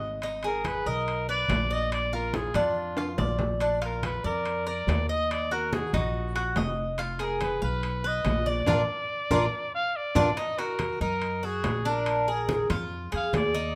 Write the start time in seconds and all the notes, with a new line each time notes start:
Already playing: G#1 D#5
0.22 D#4, high conga, high timbale
0.43 G#4 A#4, high conga, high timbale
0.64 B4, high conga, high timbale, low timbale
0.86 B1 A#4 D#5
1.07 high conga, high timbale
1.28 B4 D5, high conga
1.48 A#1, high conga, high timbale, low timbale
1.70 D5 D#5, high conga
1.91 D5, high conga, high timbale
2.13 F4 A#4, high conga
2.34 G#4, high conga, high timbale, low timbale
2.54 F2 D4 F4, high conga, low conga, high timbale
2.75 high conga
2.97 F4, high conga, high timbale
3.18 A#1 D5, high conga, low timbale
3.39 high conga, low timbale
3.60 D4, high conga, high timbale
3.82 F4 A#4, high conga, high timbale
4.03 B4, high conga, high timbale, low timbale
4.24 F2 A#4 D5
4.45 high conga, high timbale
4.67 A#4 D5, high conga
4.87 D#2, high conga, high timbale, low timbale
5.09 D#5, high conga
5.31 D5, high conga, high timbale
5.51 F#4 A#4, high conga
5.73 G#4, high conga, high timbale, low timbale
5.93 A#1 D#4 F#4, high conga, low conga, high timbale
6.14 high conga
6.36 F#4, high conga, high timbale
6.56 F1 D#5, high conga, high timbale, low timbale
6.98 F4, high conga, high timbale
7.19 G#4 A#4, high conga, high timbale
7.41 B4, high conga, high timbale, low timbale
7.62 B1 B4 F5
7.83 high conga, high timbale
8.04 B4 D#5, high conga
8.25 A#1, high conga, high timbale, low timbale
8.46 D5, high conga
8.66 A#1 D4 F4 A#4, low conga, high timbale
9.30 A#1 D4 F4 A#4, low conga, high timbale
9.75 F5
9.96 D5
10.15 A#1 D4 F4 A#4, low conga, high timbale
10.37 D#4 D#5, high conga, high timbale
10.58 F#4 A#4, high conga, high timbale
10.79 high conga, high timbale, low timbale
11.01 F#2 D#4 A#4
11.22 high conga, high timbale
11.43 F#4 G#4, high conga
11.64 A#1, high conga, high timbale, low timbale
11.85 D4 A#4, high conga
12.06 high conga, high timbale
12.28 G#4, high conga
12.49 high conga, high timbale, low timbale
12.70 F2 F4, high conga, low conga, high timbale
12.91 high conga
13.12 F2 G#4, high conga, high timbale
13.16 F5
13.33 D#2 D5, high conga, high timbale, low timbale
13.55 D#4